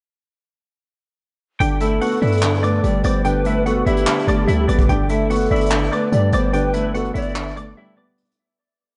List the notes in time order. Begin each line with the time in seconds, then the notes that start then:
1.60 G1 D3 G4 G5, closed hi-hat
1.80 A3 E4 A4 E5, closed hi-hat
2.01 B3 F#4 F#5, closed hi-hat
2.06 closed hi-hat
2.12 closed hi-hat
2.17 closed hi-hat
2.22 G2 D4 E4 E5, closed hi-hat
2.27 closed hi-hat
2.32 closed hi-hat
2.37 closed hi-hat
2.42 D3, clap, closed hi-hat
2.63 A3 B4 D5 D6, closed hi-hat
2.83 G1 G3 D5, closed hi-hat
3.04 G1 B3 C5 D5 D6, closed hi-hat
3.25 D3 G4 B4 G5, closed hi-hat
3.45 A3 E4 E5, closed hi-hat
3.66 B3 F#4 A4 F#5, closed hi-hat
3.86 G1 D4 E4 G4 E5, closed hi-hat
3.97 closed hi-hat
4.07 D3, clap, closed hi-hat
4.27 G1 A3 D5 D6, closed hi-hat
4.48 D2 G3 E4 E5, closed hi-hat
4.68 G1 B3 D5 D6, closed hi-hat
4.79 kick, closed hi-hat
4.89 G1 D3 G4 G5, closed hi-hat
5.09 A3 E4 A4 E5, closed hi-hat
5.30 B3 F#4 F#5, closed hi-hat
5.35 closed hi-hat
5.40 closed hi-hat
5.46 closed hi-hat
5.51 G1 D4 E4 E5, closed hi-hat
5.56 closed hi-hat
5.61 closed hi-hat
5.66 closed hi-hat
5.71 D3, clap, closed hi-hat
5.92 A3 B4 D5 D6, closed hi-hat
6.12 G2 G3 D5, closed hi-hat
6.32 G1 B3 C5 D5 D6, closed hi-hat
6.53 D3 G4 B4 G5, closed hi-hat
6.74 A3 E4 E5, closed hi-hat
6.94 B3 F#4 A4 F#5, closed hi-hat
7.05 closed hi-hat
7.14 G1 D4 E4 D5 E5, closed hi-hat
7.22 closed hi-hat
7.29 closed hi-hat
7.36 D3, clap, closed hi-hat
7.56 A3 D5 D6, closed hi-hat
7.77 G3 E4 E5
7.97 B3 D5 D6
8.18 closed hi-hat
8.25 closed hi-hat
8.32 closed hi-hat